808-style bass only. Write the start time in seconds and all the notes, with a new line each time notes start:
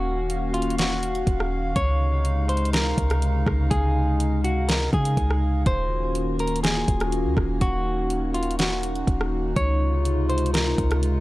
Already playing: D#1
1.27 D#1
1.76 C#2
2.98 C#2
3.47 C#2
3.71 C#2
4.93 C#3
5.17 C#2
5.66 D#1
6.88 D#1
7.25 D#2
7.37 D#1
7.61 D#1
9.07 D#1
9.56 C#2
10.78 C#2